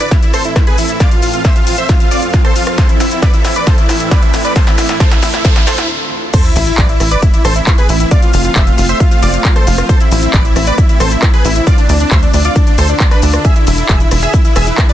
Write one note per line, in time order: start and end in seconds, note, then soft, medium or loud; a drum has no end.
0.00 0.99 A2 medium
0.00 0.99 E3 medium
0.00 4.52 C4 medium
0.00 0.99 A4 medium
0.00 0.09 B4 medium
0.00 0.09 D5 medium
0.00 closed hi-hat soft
0.00 riser medium
0.00 shaker soft
0.11 0.20 E4 medium
0.11 kick loud
0.11 snare soft
0.11 closed hi-hat medium
0.11 shaker soft
0.23 0.32 E4 medium
0.23 closed hi-hat soft
0.23 shaker soft
0.34 0.43 A4 medium
0.34 0.43 C5 medium
0.34 cross-stick medium
0.34 open hi-hat loud
0.34 shaker medium
0.45 0.54 E4 medium
0.45 closed hi-hat medium
0.45 shaker soft
0.56 0.65 E4 medium
0.56 kick loud
0.56 cross-stick medium
0.56 snare medium
0.56 closed hi-hat medium
0.56 shaker soft
0.67 0.76 G#4 medium
0.67 0.76 B4 medium
0.67 closed hi-hat medium
0.78 0.87 E4 medium
0.78 open hi-hat loud
0.78 shaker medium
0.89 0.98 E4 medium
0.89 closed hi-hat medium
0.89 shaker soft
1.00 2.76 F2 medium
1.00 2.76 F3 medium
1.00 1.09 F4 medium
1.00 5.85 A4 medium
1.00 1.09 D5 loud
1.00 kick loud
1.00 snare medium
1.00 closed hi-hat medium
1.00 shaker soft
1.11 1.21 F4 medium
1.11 closed hi-hat medium
1.11 shaker soft
1.22 1.31 F4 medium
1.22 open hi-hat loud
1.22 shaker medium
1.34 1.43 F4 medium
1.34 closed hi-hat soft
1.34 shaker soft
1.45 1.54 C5 medium
1.45 1.54 E5 loud
1.45 kick loud
1.45 snare medium
1.45 closed hi-hat medium
1.45 shaker soft
1.56 1.65 F4 medium
1.56 closed hi-hat medium
1.56 shaker soft
1.67 1.76 F4 medium
1.67 open hi-hat loud
1.67 shaker medium
1.78 1.87 C5 medium
1.78 1.87 E5 medium
1.78 closed hi-hat soft
1.78 shaker soft
1.89 1.98 F4 medium
1.89 kick loud
1.89 snare medium
1.89 closed hi-hat medium
1.89 shaker soft
2.00 2.09 F4 medium
2.00 closed hi-hat soft
2.00 shaker soft
2.11 2.20 F4 medium
2.11 2.20 D5 medium
2.11 open hi-hat loud
2.11 shaker medium
2.22 2.31 F4 medium
2.22 closed hi-hat medium
2.22 shaker soft
2.33 2.43 F4 medium
2.33 kick loud
2.33 snare medium
2.33 closed hi-hat medium
2.33 shaker soft
2.45 2.54 A4 medium
2.45 2.54 C5 medium
2.45 cross-stick medium
2.45 closed hi-hat medium
2.56 2.65 F4 medium
2.56 open hi-hat loud
2.56 shaker medium
2.67 2.76 F4 medium
2.67 cross-stick medium
2.67 closed hi-hat medium
2.67 shaker soft
2.78 4.54 A2 medium
2.78 4.54 E3 medium
2.78 2.87 A4 medium
2.78 2.87 C5 medium
2.78 kick loud
2.78 snare medium
2.78 closed hi-hat medium
2.78 shaker soft
2.89 2.98 E4 medium
2.89 closed hi-hat soft
2.89 shaker soft
3.00 3.09 E4 medium
3.00 snare medium
3.00 open hi-hat loud
3.00 shaker medium
3.11 3.20 E4 medium
3.11 closed hi-hat soft
3.11 shaker soft
3.22 3.31 B4 medium
3.22 3.31 D5 medium
3.22 kick loud
3.22 snare medium
3.22 closed hi-hat medium
3.22 shaker soft
3.34 3.43 E4 medium
3.34 closed hi-hat soft
3.34 shaker soft
3.45 3.54 E4 medium
3.45 snare medium
3.45 open hi-hat loud
3.45 shaker medium
3.56 3.65 B4 medium
3.56 3.65 D5 medium
3.56 closed hi-hat soft
3.56 shaker soft
3.67 3.76 A4 medium
3.67 3.76 C5 loud
3.67 kick loud
3.67 snare medium
3.67 closed hi-hat medium
3.67 shaker soft
3.78 3.87 E4 medium
3.78 closed hi-hat soft
3.78 shaker soft
3.89 3.98 E4 medium
3.89 snare medium
3.89 open hi-hat loud
3.89 shaker medium
4.00 4.09 E4 medium
4.00 closed hi-hat medium
4.00 shaker soft
4.11 4.20 B4 medium
4.11 4.20 D5 medium
4.11 kick loud
4.11 snare medium
4.11 closed hi-hat medium
4.11 shaker soft
4.22 4.31 E4 medium
4.22 closed hi-hat medium
4.34 4.43 E4 medium
4.34 snare medium
4.34 open hi-hat loud
4.34 shaker medium
4.45 4.54 B4 medium
4.45 4.54 D5 medium
4.45 closed hi-hat medium
4.45 shaker soft
4.56 5.88 D2 medium
4.56 5.88 D3 medium
4.56 5.88 F4 medium
4.56 4.65 A4 medium
4.56 4.65 C5 loud
4.56 kick loud
4.56 snare medium
4.56 closed hi-hat medium
4.56 shaker soft
4.67 4.76 E4 medium
4.67 snare medium
4.67 closed hi-hat medium
4.67 shaker soft
4.78 4.87 E4 medium
4.78 snare medium
4.78 open hi-hat loud
4.78 shaker medium
4.89 4.98 E4 medium
4.89 snare medium
4.89 closed hi-hat soft
4.89 shaker soft
5.00 5.09 A4 medium
5.00 5.09 C5 loud
5.00 kick loud
5.00 snare loud
5.00 closed hi-hat medium
5.00 shaker soft
5.11 5.20 E4 medium
5.11 snare medium
5.11 closed hi-hat medium
5.11 shaker soft
5.22 5.31 E4 medium
5.22 snare loud
5.22 open hi-hat loud
5.22 shaker medium
5.34 5.43 E4 medium
5.34 snare medium
5.34 shaker soft
5.45 5.54 A4 medium
5.45 5.54 C5 loud
5.45 kick loud
5.45 snare loud
5.45 closed hi-hat medium
5.45 shaker soft
5.56 5.65 E4 medium
5.56 snare medium
5.56 closed hi-hat soft
5.56 shaker soft
5.67 5.76 A4 medium
5.67 5.76 C5 loud
5.67 snare loud
5.67 open hi-hat loud
5.67 shaker medium
5.78 5.87 E4 medium
5.78 snare medium
5.78 closed hi-hat medium
5.78 shaker soft
6.34 8.10 E3 medium
6.34 11.63 A3 medium
6.34 11.63 C4 medium
6.34 6.43 A4 medium
6.34 6.43 C5 loud
6.34 kick loud
6.34 closed hi-hat medium
6.34 crash loud
6.34 sub drop medium
6.34 shaker soft
6.45 6.54 E4 medium
6.45 closed hi-hat medium
6.45 shaker soft
6.56 6.72 A1 loud
6.56 6.65 E4 medium
6.56 open hi-hat loud
6.56 shaker medium
6.67 6.76 E4 medium
6.67 closed hi-hat medium
6.67 shaker soft
6.78 6.94 A1 medium
6.78 6.87 B4 medium
6.78 6.87 D5 medium
6.78 6.87 D5 loud
6.78 kick loud
6.78 clap loud
6.78 closed hi-hat medium
6.78 shaker soft
6.89 6.98 E4 medium
6.89 closed hi-hat medium
6.89 shaker soft
7.00 7.16 A1 medium
7.00 7.09 E4 medium
7.00 cross-stick medium
7.00 open hi-hat loud
7.00 shaker medium
7.11 7.20 B4 medium
7.11 7.20 D5 loud
7.11 7.20 D5 medium
7.11 closed hi-hat medium
7.11 shaker soft
7.22 7.31 E4 medium
7.22 7.32 E4 medium
7.22 kick loud
7.22 closed hi-hat medium
7.22 shaker soft
7.34 7.43 E4 medium
7.34 closed hi-hat medium
7.34 shaker soft
7.45 7.61 A1 medium
7.45 7.54 A4 medium
7.45 7.54 C5 loud
7.45 7.54 C5 medium
7.45 cross-stick medium
7.45 open hi-hat loud
7.45 shaker medium
7.56 7.65 E4 medium
7.56 closed hi-hat medium
7.56 shaker soft
7.67 7.76 E4 medium
7.67 kick loud
7.67 cross-stick medium
7.67 clap loud
7.67 closed hi-hat medium
7.67 shaker soft
7.78 7.87 G#4 medium
7.78 7.87 B4 loud
7.78 closed hi-hat medium
7.89 8.05 A1 loud
7.89 7.98 E4 medium
7.89 open hi-hat loud
7.89 shaker medium
8.00 8.09 E4 medium
8.00 closed hi-hat medium
8.00 shaker soft
8.11 9.87 F3 medium
8.11 8.20 F4 medium
8.11 8.20 D5 loud
8.11 kick loud
8.11 closed hi-hat medium
8.11 shaker soft
8.22 8.31 F4 medium
8.22 8.32 F4 medium
8.22 closed hi-hat medium
8.22 shaker soft
8.34 8.50 F1 loud
8.34 8.43 F4 medium
8.34 open hi-hat loud
8.34 shaker medium
8.45 8.54 F4 medium
8.45 closed hi-hat soft
8.45 shaker soft
8.56 8.72 F1 medium
8.56 8.65 C5 medium
8.56 8.65 E5 loud
8.56 8.65 E5 medium
8.56 kick loud
8.56 clap loud
8.56 closed hi-hat medium
8.56 shaker soft
8.67 8.76 F4 medium
8.67 closed hi-hat medium
8.67 shaker soft
8.78 8.94 F1 medium
8.78 8.87 F4 medium
8.78 open hi-hat loud
8.78 shaker medium
8.89 8.98 C5 medium
8.89 8.98 E5 medium
8.89 closed hi-hat medium
8.89 shaker soft
9.00 9.09 F4 medium
9.00 kick loud
9.00 closed hi-hat medium
9.00 shaker soft
9.11 9.20 F4 medium
9.11 closed hi-hat medium
9.11 shaker soft
9.22 9.39 F1 medium
9.22 9.31 F4 medium
9.22 9.31 D5 loud
9.22 9.32 D5 medium
9.22 open hi-hat loud
9.22 shaker medium
9.34 9.43 F4 medium
9.34 closed hi-hat medium
9.34 shaker soft
9.45 9.54 F4 medium
9.45 kick loud
9.45 clap loud
9.45 closed hi-hat medium
9.45 shaker soft
9.56 9.65 A4 medium
9.56 9.65 C5 medium
9.56 cross-stick medium
9.56 closed hi-hat medium
9.67 9.83 F1 loud
9.67 9.76 F4 medium
9.67 open hi-hat loud
9.67 shaker medium
9.78 9.87 F4 medium
9.78 cross-stick medium
9.78 closed hi-hat medium
9.78 shaker soft
9.89 11.65 E3 medium
9.89 9.98 A4 medium
9.89 9.98 C5 loud
9.89 kick loud
9.89 closed hi-hat medium
9.89 shaker soft
10.00 10.09 E4 medium
10.00 closed hi-hat medium
10.00 shaker soft
10.11 10.28 A1 loud
10.11 10.20 E4 medium
10.11 open hi-hat loud
10.11 shaker medium
10.23 10.32 E4 medium
10.23 closed hi-hat medium
10.23 shaker soft
10.34 10.50 A1 medium
10.34 10.43 B4 medium
10.34 10.43 D5 loud
10.34 kick loud
10.34 clap loud
10.34 closed hi-hat medium
10.34 shaker soft
10.45 10.54 E4 medium
10.45 closed hi-hat medium
10.45 shaker soft
10.56 10.72 A1 medium
10.56 10.65 E4 medium
10.56 cross-stick medium
10.56 open hi-hat loud
10.56 shaker medium
10.67 10.76 B4 medium
10.67 10.76 D5 loud
10.67 10.76 D5 medium
10.67 closed hi-hat soft
10.67 shaker soft
10.78 10.87 E4 medium
10.78 kick loud
10.78 closed hi-hat medium
10.78 shaker soft
10.89 10.98 E4 medium
10.89 closed hi-hat soft
10.89 shaker soft
11.00 11.16 A1 medium
11.00 11.09 A4 medium
11.00 11.09 C5 medium
11.00 11.09 C5 loud
11.00 cross-stick medium
11.00 open hi-hat loud
11.00 shaker medium
11.11 11.20 E4 medium
11.11 closed hi-hat medium
11.11 shaker soft
11.22 11.31 E4 medium
11.22 11.32 E4 medium
11.22 kick loud
11.22 cross-stick medium
11.22 clap loud
11.22 closed hi-hat medium
11.22 shaker soft
11.33 11.43 G#4 medium
11.33 11.43 B4 loud
11.33 11.43 B4 medium
11.33 closed hi-hat medium
11.45 11.61 A1 loud
11.45 11.54 E4 medium
11.45 open hi-hat loud
11.45 shaker medium
11.56 11.65 E4 medium
11.56 closed hi-hat medium
11.56 shaker soft
11.67 13.43 D3 medium
11.67 13.43 D4 medium
11.67 13.43 F4 medium
11.67 11.76 F4 medium
11.67 13.43 A4 medium
11.67 11.76 D5 loud
11.67 kick loud
11.67 closed hi-hat medium
11.67 shaker soft
11.78 11.87 D4 medium
11.78 closed hi-hat soft
11.78 shaker soft
11.89 12.05 D2 loud
11.89 11.98 D4 medium
11.89 open hi-hat loud
11.89 shaker medium
12.00 12.09 D4 medium
12.00 closed hi-hat soft
12.00 shaker soft
12.11 12.27 D2 medium
12.11 12.21 C5 medium
12.11 12.20 E5 medium
12.11 12.21 E5 loud
12.11 kick loud
12.11 clap loud
12.11 closed hi-hat medium
12.11 shaker soft
12.23 12.32 D4 medium
12.23 closed hi-hat medium
12.23 shaker soft
12.34 12.50 D2 medium
12.34 12.43 D4 medium
12.34 open hi-hat loud
12.34 shaker medium
12.45 12.54 F4 medium
12.45 12.54 D5 medium
12.45 closed hi-hat soft
12.45 shaker soft
12.56 12.65 D4 medium
12.56 kick loud
12.56 closed hi-hat medium
12.56 shaker soft
12.67 12.76 D4 medium
12.67 closed hi-hat soft
12.67 shaker soft
12.78 12.94 D2 medium
12.78 12.87 A4 medium
12.78 12.87 C5 loud
12.78 open hi-hat loud
12.78 shaker medium
12.89 12.98 D4 medium
12.89 closed hi-hat medium
12.89 shaker soft
13.00 13.09 D4 medium
13.00 kick loud
13.00 clap loud
13.00 closed hi-hat medium
13.00 shaker soft
13.11 13.21 D4 medium
13.11 13.20 B4 medium
13.11 13.21 B4 medium
13.11 cross-stick medium
13.11 closed hi-hat medium
13.22 13.39 D2 medium
13.22 13.31 D4 medium
13.22 13.32 D4 medium
13.22 open hi-hat loud
13.22 shaker medium
13.33 13.43 D4 medium
13.33 cross-stick medium
13.33 closed hi-hat medium
13.33 shaker soft
13.45 14.93 E3 medium
13.45 14.93 E4 medium
13.45 14.93 G#4 medium
13.45 13.54 G#4 medium
13.45 14.93 B4 medium
13.45 13.54 E5 loud
13.45 kick loud
13.45 closed hi-hat medium
13.45 shaker soft
13.56 13.65 E4 medium
13.56 closed hi-hat medium
13.56 shaker soft
13.67 13.83 E1 loud
13.67 13.76 E4 medium
13.67 open hi-hat loud
13.67 ride medium
13.67 shaker medium
13.78 13.87 E4 medium
13.78 closed hi-hat soft
13.78 shaker soft
13.89 14.05 E1 medium
13.89 13.98 G#4 medium
13.89 13.98 E5 loud
13.89 kick loud
13.89 clap loud
13.89 closed hi-hat medium
13.89 shaker soft
14.00 14.09 E4 medium
14.00 closed hi-hat soft
14.00 shaker soft
14.11 14.27 E1 medium
14.11 14.20 E4 medium
14.11 cross-stick medium
14.11 open hi-hat loud
14.11 ride medium
14.11 shaker medium
14.22 14.32 G#4 medium
14.22 14.31 E5 loud
14.22 14.32 E5 medium
14.22 closed hi-hat soft
14.22 shaker soft
14.34 14.43 E4 medium
14.34 kick loud
14.34 closed hi-hat medium
14.34 shaker soft
14.45 14.54 E4 medium
14.45 closed hi-hat soft
14.45 shaker soft
14.56 14.72 E1 medium
14.56 14.65 G#4 medium
14.56 14.65 E5 loud
14.56 cross-stick medium
14.56 open hi-hat loud
14.56 ride medium
14.56 shaker medium
14.67 14.76 E4 medium
14.67 closed hi-hat soft
14.67 shaker soft
14.78 14.87 E4 medium
14.78 kick loud
14.78 cross-stick medium
14.78 clap loud
14.78 closed hi-hat medium
14.78 shaker soft
14.89 14.93 B4 medium
14.89 14.93 D5 loud
14.89 14.93 D5 medium
14.89 closed hi-hat medium